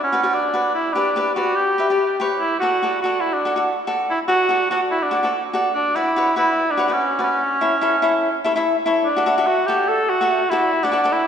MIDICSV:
0, 0, Header, 1, 3, 480
1, 0, Start_track
1, 0, Key_signature, 2, "major"
1, 0, Tempo, 415225
1, 881, Time_signature, 4, 2, 24, 8
1, 13033, End_track
2, 0, Start_track
2, 0, Title_t, "Cavaquinho"
2, 0, Program_c, 0, 24
2, 144, Note_on_c, 0, 66, 68
2, 149, Note_on_c, 0, 71, 61
2, 158, Note_on_c, 0, 74, 74
2, 229, Note_off_c, 0, 66, 0
2, 232, Note_off_c, 0, 71, 0
2, 236, Note_off_c, 0, 74, 0
2, 269, Note_on_c, 0, 66, 66
2, 278, Note_on_c, 0, 71, 59
2, 286, Note_on_c, 0, 74, 75
2, 494, Note_off_c, 0, 66, 0
2, 498, Note_off_c, 0, 71, 0
2, 502, Note_off_c, 0, 74, 0
2, 619, Note_on_c, 0, 66, 66
2, 624, Note_on_c, 0, 71, 58
2, 633, Note_on_c, 0, 74, 61
2, 870, Note_off_c, 0, 66, 0
2, 874, Note_off_c, 0, 71, 0
2, 874, Note_off_c, 0, 74, 0
2, 1103, Note_on_c, 0, 67, 70
2, 1109, Note_on_c, 0, 71, 59
2, 1119, Note_on_c, 0, 74, 73
2, 1264, Note_off_c, 0, 67, 0
2, 1267, Note_off_c, 0, 71, 0
2, 1272, Note_off_c, 0, 74, 0
2, 1340, Note_on_c, 0, 67, 64
2, 1350, Note_on_c, 0, 71, 58
2, 1356, Note_on_c, 0, 74, 76
2, 1503, Note_off_c, 0, 67, 0
2, 1508, Note_off_c, 0, 71, 0
2, 1511, Note_off_c, 0, 74, 0
2, 1572, Note_on_c, 0, 67, 65
2, 1580, Note_on_c, 0, 71, 62
2, 1586, Note_on_c, 0, 74, 75
2, 1880, Note_off_c, 0, 67, 0
2, 1883, Note_off_c, 0, 71, 0
2, 1886, Note_off_c, 0, 74, 0
2, 2058, Note_on_c, 0, 67, 70
2, 2069, Note_on_c, 0, 71, 64
2, 2077, Note_on_c, 0, 76, 77
2, 2149, Note_off_c, 0, 67, 0
2, 2154, Note_off_c, 0, 71, 0
2, 2158, Note_off_c, 0, 76, 0
2, 2197, Note_on_c, 0, 67, 63
2, 2201, Note_on_c, 0, 71, 60
2, 2209, Note_on_c, 0, 74, 69
2, 2420, Note_off_c, 0, 67, 0
2, 2422, Note_off_c, 0, 71, 0
2, 2426, Note_off_c, 0, 74, 0
2, 2540, Note_on_c, 0, 67, 76
2, 2551, Note_on_c, 0, 71, 69
2, 2557, Note_on_c, 0, 73, 87
2, 2793, Note_off_c, 0, 67, 0
2, 2798, Note_off_c, 0, 71, 0
2, 2801, Note_off_c, 0, 73, 0
2, 3025, Note_on_c, 0, 66, 65
2, 3034, Note_on_c, 0, 69, 63
2, 3040, Note_on_c, 0, 74, 75
2, 3187, Note_off_c, 0, 66, 0
2, 3191, Note_off_c, 0, 69, 0
2, 3194, Note_off_c, 0, 74, 0
2, 3266, Note_on_c, 0, 66, 66
2, 3277, Note_on_c, 0, 69, 58
2, 3283, Note_on_c, 0, 74, 76
2, 3428, Note_off_c, 0, 66, 0
2, 3433, Note_off_c, 0, 69, 0
2, 3436, Note_off_c, 0, 74, 0
2, 3511, Note_on_c, 0, 66, 73
2, 3523, Note_on_c, 0, 69, 56
2, 3533, Note_on_c, 0, 74, 73
2, 3813, Note_off_c, 0, 66, 0
2, 3815, Note_off_c, 0, 69, 0
2, 3822, Note_off_c, 0, 74, 0
2, 3990, Note_on_c, 0, 66, 68
2, 3997, Note_on_c, 0, 69, 59
2, 4010, Note_on_c, 0, 74, 76
2, 4076, Note_off_c, 0, 66, 0
2, 4079, Note_off_c, 0, 69, 0
2, 4086, Note_off_c, 0, 74, 0
2, 4114, Note_on_c, 0, 66, 64
2, 4126, Note_on_c, 0, 69, 56
2, 4131, Note_on_c, 0, 74, 68
2, 4341, Note_off_c, 0, 66, 0
2, 4343, Note_off_c, 0, 69, 0
2, 4348, Note_off_c, 0, 74, 0
2, 4476, Note_on_c, 0, 66, 79
2, 4479, Note_on_c, 0, 69, 76
2, 4486, Note_on_c, 0, 74, 70
2, 4774, Note_off_c, 0, 66, 0
2, 4776, Note_off_c, 0, 69, 0
2, 4776, Note_off_c, 0, 74, 0
2, 4948, Note_on_c, 0, 66, 70
2, 4956, Note_on_c, 0, 69, 60
2, 4965, Note_on_c, 0, 74, 68
2, 5109, Note_off_c, 0, 66, 0
2, 5114, Note_off_c, 0, 69, 0
2, 5116, Note_off_c, 0, 74, 0
2, 5189, Note_on_c, 0, 66, 64
2, 5196, Note_on_c, 0, 69, 59
2, 5207, Note_on_c, 0, 74, 76
2, 5350, Note_off_c, 0, 66, 0
2, 5354, Note_off_c, 0, 69, 0
2, 5359, Note_off_c, 0, 74, 0
2, 5442, Note_on_c, 0, 66, 68
2, 5448, Note_on_c, 0, 69, 64
2, 5456, Note_on_c, 0, 74, 78
2, 5737, Note_off_c, 0, 66, 0
2, 5740, Note_off_c, 0, 69, 0
2, 5744, Note_off_c, 0, 74, 0
2, 5908, Note_on_c, 0, 66, 68
2, 5913, Note_on_c, 0, 69, 61
2, 5924, Note_on_c, 0, 74, 74
2, 5996, Note_off_c, 0, 66, 0
2, 5998, Note_off_c, 0, 69, 0
2, 6004, Note_off_c, 0, 74, 0
2, 6045, Note_on_c, 0, 66, 66
2, 6055, Note_on_c, 0, 69, 54
2, 6065, Note_on_c, 0, 74, 71
2, 6266, Note_off_c, 0, 66, 0
2, 6268, Note_off_c, 0, 69, 0
2, 6276, Note_off_c, 0, 74, 0
2, 6398, Note_on_c, 0, 66, 76
2, 6403, Note_on_c, 0, 69, 72
2, 6414, Note_on_c, 0, 74, 85
2, 6644, Note_off_c, 0, 66, 0
2, 6646, Note_off_c, 0, 69, 0
2, 6652, Note_off_c, 0, 74, 0
2, 6885, Note_on_c, 0, 66, 67
2, 6891, Note_on_c, 0, 71, 54
2, 6898, Note_on_c, 0, 74, 75
2, 7039, Note_off_c, 0, 66, 0
2, 7040, Note_off_c, 0, 71, 0
2, 7045, Note_off_c, 0, 74, 0
2, 7125, Note_on_c, 0, 66, 71
2, 7133, Note_on_c, 0, 71, 58
2, 7142, Note_on_c, 0, 73, 72
2, 7279, Note_off_c, 0, 66, 0
2, 7280, Note_off_c, 0, 71, 0
2, 7287, Note_off_c, 0, 73, 0
2, 7353, Note_on_c, 0, 66, 71
2, 7363, Note_on_c, 0, 71, 67
2, 7374, Note_on_c, 0, 74, 64
2, 7653, Note_off_c, 0, 66, 0
2, 7659, Note_off_c, 0, 71, 0
2, 7662, Note_off_c, 0, 74, 0
2, 7830, Note_on_c, 0, 66, 67
2, 7836, Note_on_c, 0, 71, 64
2, 7849, Note_on_c, 0, 73, 78
2, 7917, Note_off_c, 0, 66, 0
2, 7921, Note_off_c, 0, 71, 0
2, 7927, Note_off_c, 0, 73, 0
2, 7955, Note_on_c, 0, 66, 62
2, 7967, Note_on_c, 0, 71, 59
2, 7972, Note_on_c, 0, 74, 68
2, 8181, Note_off_c, 0, 66, 0
2, 8187, Note_off_c, 0, 71, 0
2, 8190, Note_off_c, 0, 74, 0
2, 8309, Note_on_c, 0, 66, 67
2, 8315, Note_on_c, 0, 71, 59
2, 8324, Note_on_c, 0, 74, 63
2, 8559, Note_off_c, 0, 66, 0
2, 8563, Note_off_c, 0, 71, 0
2, 8565, Note_off_c, 0, 74, 0
2, 8797, Note_on_c, 0, 64, 72
2, 8801, Note_on_c, 0, 69, 64
2, 8812, Note_on_c, 0, 73, 71
2, 8955, Note_off_c, 0, 64, 0
2, 8957, Note_off_c, 0, 69, 0
2, 8959, Note_off_c, 0, 73, 0
2, 9033, Note_on_c, 0, 64, 76
2, 9045, Note_on_c, 0, 69, 77
2, 9052, Note_on_c, 0, 73, 79
2, 9193, Note_off_c, 0, 64, 0
2, 9200, Note_off_c, 0, 69, 0
2, 9201, Note_off_c, 0, 73, 0
2, 9273, Note_on_c, 0, 64, 84
2, 9281, Note_on_c, 0, 69, 79
2, 9292, Note_on_c, 0, 73, 80
2, 9573, Note_off_c, 0, 64, 0
2, 9578, Note_off_c, 0, 69, 0
2, 9580, Note_off_c, 0, 73, 0
2, 9762, Note_on_c, 0, 64, 81
2, 9771, Note_on_c, 0, 69, 72
2, 9777, Note_on_c, 0, 73, 91
2, 9843, Note_off_c, 0, 64, 0
2, 9847, Note_off_c, 0, 69, 0
2, 9851, Note_off_c, 0, 73, 0
2, 9891, Note_on_c, 0, 64, 75
2, 9898, Note_on_c, 0, 69, 67
2, 9907, Note_on_c, 0, 76, 87
2, 10108, Note_off_c, 0, 64, 0
2, 10112, Note_off_c, 0, 69, 0
2, 10117, Note_off_c, 0, 76, 0
2, 10239, Note_on_c, 0, 64, 79
2, 10248, Note_on_c, 0, 69, 70
2, 10256, Note_on_c, 0, 73, 85
2, 10483, Note_off_c, 0, 64, 0
2, 10488, Note_off_c, 0, 69, 0
2, 10492, Note_off_c, 0, 73, 0
2, 10594, Note_on_c, 0, 66, 73
2, 10604, Note_on_c, 0, 69, 58
2, 10612, Note_on_c, 0, 74, 79
2, 10673, Note_off_c, 0, 66, 0
2, 10675, Note_off_c, 0, 69, 0
2, 10681, Note_off_c, 0, 74, 0
2, 10706, Note_on_c, 0, 66, 76
2, 10713, Note_on_c, 0, 69, 69
2, 10722, Note_on_c, 0, 74, 82
2, 10794, Note_off_c, 0, 66, 0
2, 10798, Note_off_c, 0, 69, 0
2, 10802, Note_off_c, 0, 74, 0
2, 10840, Note_on_c, 0, 66, 71
2, 10845, Note_on_c, 0, 69, 66
2, 10853, Note_on_c, 0, 76, 78
2, 11062, Note_off_c, 0, 66, 0
2, 11065, Note_off_c, 0, 69, 0
2, 11068, Note_off_c, 0, 76, 0
2, 11191, Note_on_c, 0, 66, 73
2, 11197, Note_on_c, 0, 69, 70
2, 11207, Note_on_c, 0, 74, 76
2, 11567, Note_off_c, 0, 66, 0
2, 11571, Note_off_c, 0, 69, 0
2, 11572, Note_off_c, 0, 74, 0
2, 11801, Note_on_c, 0, 66, 73
2, 11811, Note_on_c, 0, 69, 64
2, 11817, Note_on_c, 0, 76, 78
2, 12021, Note_off_c, 0, 66, 0
2, 12026, Note_off_c, 0, 69, 0
2, 12029, Note_off_c, 0, 76, 0
2, 12154, Note_on_c, 0, 66, 74
2, 12162, Note_on_c, 0, 69, 64
2, 12171, Note_on_c, 0, 74, 80
2, 12376, Note_off_c, 0, 66, 0
2, 12380, Note_off_c, 0, 69, 0
2, 12384, Note_off_c, 0, 74, 0
2, 12521, Note_on_c, 0, 66, 72
2, 12531, Note_on_c, 0, 69, 62
2, 12537, Note_on_c, 0, 74, 78
2, 12594, Note_off_c, 0, 66, 0
2, 12596, Note_off_c, 0, 69, 0
2, 12601, Note_off_c, 0, 74, 0
2, 12620, Note_on_c, 0, 66, 76
2, 12633, Note_on_c, 0, 69, 72
2, 12640, Note_on_c, 0, 74, 83
2, 12708, Note_off_c, 0, 66, 0
2, 12714, Note_off_c, 0, 69, 0
2, 12718, Note_off_c, 0, 74, 0
2, 12761, Note_on_c, 0, 66, 72
2, 12773, Note_on_c, 0, 69, 67
2, 12779, Note_on_c, 0, 74, 82
2, 12979, Note_off_c, 0, 66, 0
2, 12985, Note_off_c, 0, 69, 0
2, 12988, Note_off_c, 0, 74, 0
2, 13033, End_track
3, 0, Start_track
3, 0, Title_t, "Cor anglais"
3, 0, Program_c, 1, 69
3, 45, Note_on_c, 1, 61, 81
3, 391, Note_on_c, 1, 62, 81
3, 408, Note_off_c, 1, 61, 0
3, 856, Note_off_c, 1, 62, 0
3, 863, Note_on_c, 1, 64, 88
3, 1078, Note_on_c, 1, 62, 84
3, 1095, Note_off_c, 1, 64, 0
3, 1554, Note_off_c, 1, 62, 0
3, 1561, Note_on_c, 1, 66, 88
3, 1798, Note_on_c, 1, 67, 104
3, 1815, Note_off_c, 1, 66, 0
3, 2542, Note_off_c, 1, 67, 0
3, 2760, Note_on_c, 1, 64, 85
3, 2998, Note_off_c, 1, 64, 0
3, 3005, Note_on_c, 1, 66, 90
3, 3471, Note_off_c, 1, 66, 0
3, 3483, Note_on_c, 1, 66, 83
3, 3705, Note_on_c, 1, 64, 90
3, 3723, Note_off_c, 1, 66, 0
3, 3852, Note_on_c, 1, 62, 76
3, 3870, Note_off_c, 1, 64, 0
3, 4226, Note_off_c, 1, 62, 0
3, 4744, Note_on_c, 1, 64, 90
3, 4848, Note_off_c, 1, 64, 0
3, 4948, Note_on_c, 1, 66, 102
3, 5404, Note_off_c, 1, 66, 0
3, 5441, Note_on_c, 1, 66, 88
3, 5550, Note_off_c, 1, 66, 0
3, 5681, Note_on_c, 1, 64, 88
3, 5815, Note_on_c, 1, 62, 76
3, 5832, Note_off_c, 1, 64, 0
3, 6167, Note_off_c, 1, 62, 0
3, 6638, Note_on_c, 1, 62, 93
3, 6886, Note_on_c, 1, 64, 98
3, 6903, Note_off_c, 1, 62, 0
3, 7350, Note_off_c, 1, 64, 0
3, 7357, Note_on_c, 1, 64, 101
3, 7758, Note_on_c, 1, 62, 88
3, 7775, Note_off_c, 1, 64, 0
3, 8008, Note_on_c, 1, 61, 84
3, 8025, Note_off_c, 1, 62, 0
3, 8344, Note_off_c, 1, 61, 0
3, 8361, Note_on_c, 1, 61, 91
3, 9978, Note_off_c, 1, 61, 0
3, 10458, Note_on_c, 1, 62, 84
3, 10943, Note_on_c, 1, 66, 90
3, 10960, Note_off_c, 1, 62, 0
3, 11172, Note_on_c, 1, 67, 84
3, 11190, Note_off_c, 1, 66, 0
3, 11429, Note_on_c, 1, 69, 94
3, 11446, Note_off_c, 1, 67, 0
3, 11668, Note_on_c, 1, 66, 92
3, 11685, Note_off_c, 1, 69, 0
3, 12138, Note_on_c, 1, 64, 91
3, 12155, Note_off_c, 1, 66, 0
3, 12529, Note_on_c, 1, 62, 90
3, 12546, Note_off_c, 1, 64, 0
3, 12863, Note_on_c, 1, 64, 87
3, 12880, Note_off_c, 1, 62, 0
3, 13033, Note_off_c, 1, 64, 0
3, 13033, End_track
0, 0, End_of_file